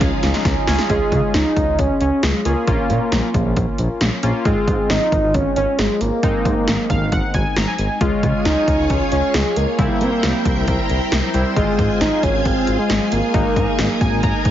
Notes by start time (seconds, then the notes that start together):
Already playing: C#3 F3 G#3 C#4 F4 G#4
0.01 C#2 C#4, kick, snare, closed hi-hat
0.23 C#2 D#4, snare, closed hi-hat
0.34 snare, closed hi-hat
0.45 C#2 C#4, kick, snare, closed hi-hat
0.56 F4
0.67 C#2 C#4 F4 G#4, snare, open hi-hat
0.78 F4, snare, closed hi-hat
0.90 C#2 G#3 C#4 F4 G#4, kick, closed hi-hat
1.12 C#3, kick, closed hi-hat
1.34 C#2 D#4, snare, closed hi-hat
1.57 C#2, kick, closed hi-hat
1.67 C#2
1.79 C#2 C#4, kick, closed hi-hat
2.01 C#2 C#4, closed hi-hat
2.23 C#2 G#3, snare, closed hi-hat
2.45 C#2 A#3 C#4 F4 G#4, closed hi-hat
2.68 A#1 A#3 C#4 F4, kick, closed hi-hat
2.90 A#2, closed hi-hat
3.12 A#1, snare, closed hi-hat
3.34 A#1, kick, closed hi-hat
3.45 A#1
3.56 A#1, kick, closed hi-hat
3.78 A#1, closed hi-hat
4.01 A#1, snare, closed hi-hat
4.23 A#1 A#3 C#4 F4, closed hi-hat
4.45 G#1 G#3 C4 F4, kick, closed hi-hat
4.68 G#2, kick, closed hi-hat
4.90 G#1 D#4, snare, closed hi-hat
5.12 G#1, kick, closed hi-hat
5.23 G#1
5.34 G#1 C#4, kick, closed hi-hat
5.56 G#1 C#4, closed hi-hat
5.79 G#1 G#3, snare, closed hi-hat
6.01 G#1 A#3, closed hi-hat
6.23 G#1 G#3 C4 D#4, kick, closed hi-hat
6.45 G#2, kick, closed hi-hat
6.68 G#1, snare, closed hi-hat
6.90 G#1 F5, kick, closed hi-hat
7.01 G#1
7.12 G#1 F#5, kick, closed hi-hat
7.34 G#1 G#5, kick, closed hi-hat
7.56 G#1 A#5, snare, closed hi-hat
7.68 G#5
7.79 G#1, closed hi-hat
8.01 C#2 G#3 C#4 F4 G#4 C#5 G#5, kick, closed hi-hat
8.23 C#3, kick, closed hi-hat
8.45 C#2 D#4, snare, closed hi-hat
8.68 C#2, kick, closed hi-hat
8.79 C#2
8.90 C#2 C#4, kick, closed hi-hat
9.12 C#2 C#4, closed hi-hat
9.34 C#2 G#3, snare, closed hi-hat
9.56 C#2 A#3, closed hi-hat
9.79 C2 G3 C4 E4 A#4 C5 G5, kick, closed hi-hat
10.01 C3, closed hi-hat
10.23 C2, snare, closed hi-hat
10.45 C2, kick, closed hi-hat
10.56 C2
10.68 C2, kick, closed hi-hat
10.89 C2, closed hi-hat
11.12 C2, snare, closed hi-hat
11.34 C2 G3 C4 E4, closed hi-hat
11.56 G#1 G#3 C4 F4 G#4 G#5, kick, closed hi-hat
11.79 G#2, kick, closed hi-hat
12.01 G#1 D#4, snare, closed hi-hat
12.23 G#1 C#4, kick, closed hi-hat
12.34 G#1
12.45 G#1 C4, kick, closed hi-hat
12.67 G#1, closed hi-hat
12.79 G#3
12.90 G#1, snare, closed hi-hat
13.12 G#1 A#3, closed hi-hat
13.34 G#1 G#3 A#3 D#4 A#4 G#5, kick, closed hi-hat
13.56 G#2, kick, closed hi-hat
13.79 G#1, snare, closed hi-hat
14.01 G#1 G#5, kick, closed hi-hat
14.12 G#1
14.23 G#1 A#5, kick, closed hi-hat
14.45 G#1, kick, closed hi-hat